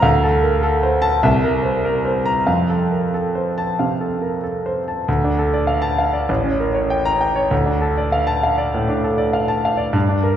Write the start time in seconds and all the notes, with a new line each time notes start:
0.02 D2 F5
0.23 A4
0.43 A#4
0.63 A4
0.83 C5
1.02 A5
1.23 C2 E5
1.44 A#4
1.63 C5
1.85 A#4
2.05 C5
2.26 A#5
2.47 F2 F5
2.70 A4
2.91 A#4
3.14 A4
3.35 C5
3.58 A5
3.79 C3 F5
4.01 A4
4.22 A#4
4.44 A4
4.66 C5
4.88 A5
5.08 D2
5.24 D4
5.39 A4
5.54 D5
5.67 F5
5.82 A5
5.99 F5
6.13 D5
6.29 A1
6.43 C#4
6.60 A#4
6.75 C#5
6.90 G5
7.05 A#5
7.21 G5
7.36 C#5
7.51 D2
7.66 D4
7.81 A4
7.98 D5
8.12 F5
8.27 A5
8.43 F5
8.58 D5
8.74 A2
8.89 D4
9.04 A4
9.18 D5
9.33 F5
9.48 A5
9.65 F5
9.77 D5
9.93 G2
10.09 D4
10.23 A#4